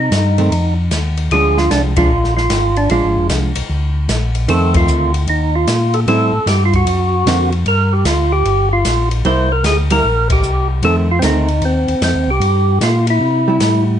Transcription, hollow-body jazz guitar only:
0.38 0.50 D#3 medium
0.38 0.51 A3 medium
0.38 0.51 C4 medium
1.32 1.92 F3 soft
1.32 1.93 G#3 soft
1.32 1.93 D4 medium
1.98 2.10 F3 medium
1.98 2.10 G#3 medium
1.98 2.10 D4 medium
2.91 3.51 F3 soft
2.91 3.51 G#3 medium
2.91 3.52 D4 medium
4.48 5.09 D#3 medium
4.48 5.10 A3 medium
4.48 5.10 C4 medium
6.08 6.31 G3 medium
6.08 6.31 C4 medium
6.08 6.32 E4 medium
7.27 7.50 D3 soft
7.27 7.50 A#3 medium
7.27 7.50 C4 medium
7.27 7.51 F#4 medium
9.25 9.48 G3 medium
9.25 9.49 A#3 medium
9.25 9.49 E4 medium
9.91 10.03 G3 medium
9.91 10.03 A#3 medium
9.91 10.04 E4 medium
10.84 11.07 D#3 soft
10.84 11.07 A3 medium
10.84 11.08 C4 medium
11.23 11.46 D#3 medium
11.23 11.47 A3 medium
11.23 11.47 C4 medium
13.48 13.98 G3 medium
13.48 13.99 E4 medium

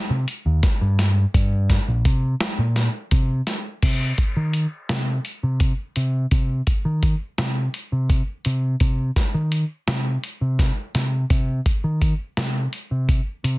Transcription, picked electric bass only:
0.10 0.24 C3 medium
0.46 0.60 D#2 medium
0.81 1.24 G2 medium
1.34 1.77 G2 loud
1.88 2.02 A#1 medium
2.05 2.34 C3 medium
2.58 2.87 A#2 medium
3.11 3.40 C3 medium
3.83 4.12 C3 medium
4.37 4.65 D#3 medium
4.90 5.18 C3 medium
5.43 5.72 C3 medium
5.96 6.25 C3 medium
6.32 6.60 C3 medium
6.85 7.14 D#3 medium
7.39 7.67 C3 loud
7.92 8.21 C3 medium
8.46 8.74 C3 medium
8.81 9.10 C3 medium
9.34 9.63 D#3 medium
9.88 10.16 C3 medium
10.41 10.70 C3 medium
10.95 11.24 C3 medium
11.30 11.59 C3 medium
11.84 12.13 D#3 medium
12.38 12.66 C3 medium
12.91 13.20 C3 medium
13.44 13.59 C3 medium

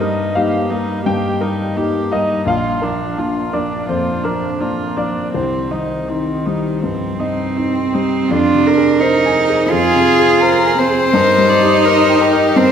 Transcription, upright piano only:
0.00 1.01 G2 medium
0.00 0.56 A#4 soft
0.00 0.31 D#5 medium
0.35 0.91 D#4 soft
0.35 1.01 F5 medium
0.72 1.27 A#3 soft
1.06 2.43 G2 soft
1.06 2.08 G5 medium
1.41 1.97 A#4 soft
1.77 2.33 D#4 soft
2.11 2.47 A#3 soft
2.11 2.45 D#5 medium
2.46 3.84 A#1 soft
2.46 3.50 F5 medium
2.82 3.39 A#4 soft
3.18 3.74 D4 soft
3.53 4.10 A#3 soft
3.53 3.86 D5 medium
3.89 4.46 F2 soft
3.89 4.22 C5 medium
4.25 4.93 A#4 medium
4.61 5.19 D4 soft
4.97 5.34 A#3 soft
4.97 5.32 D5 medium
5.34 6.79 C2 soft
5.34 7.90 C5 soft
5.71 6.31 D#5 soft
6.10 6.69 D#4 soft
6.47 7.06 G3 soft
6.84 7.42 G2 soft
7.20 7.79 D#5 soft
7.57 8.16 D#4 soft
7.95 8.31 G3 soft
8.31 9.68 F2 medium
8.54 8.92 C3 soft
8.77 9.15 G#4 soft
9.01 9.39 C5 soft
9.26 9.63 G#5 soft
9.49 9.86 G#4 soft
9.72 11.10 F2 soft
9.95 10.33 C3 soft
10.19 10.57 G#4 soft
10.42 10.80 C5 soft
10.66 11.04 G#5 soft
10.90 11.14 G#4 soft
11.14 12.52 G2 medium
11.38 11.76 G3 soft
11.61 11.99 G4 soft
11.85 12.23 A#4 soft
12.09 12.47 G5 soft
12.33 12.71 A#4 soft
12.56 12.72 G2 soft

